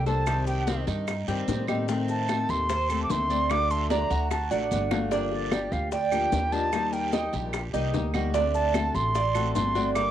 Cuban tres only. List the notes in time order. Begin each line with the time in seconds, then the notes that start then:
0.06 C5
0.47 G4
0.67 C4
0.87 D#4
1.28 C4
1.68 D#4
1.89 C4
2.29 A4
2.69 C5
2.90 A4
3.30 D5
3.71 A4
3.90 D4
4.11 F#4
4.51 D4
4.91 F4
5.11 D4
5.52 G4
5.92 D5
6.12 G4
6.52 D#5
6.93 A#4
7.13 D#4
7.33 G4
7.74 D#4
8.14 F#4
8.34 D4
8.74 A4
9.15 D5
9.35 A4
9.75 D5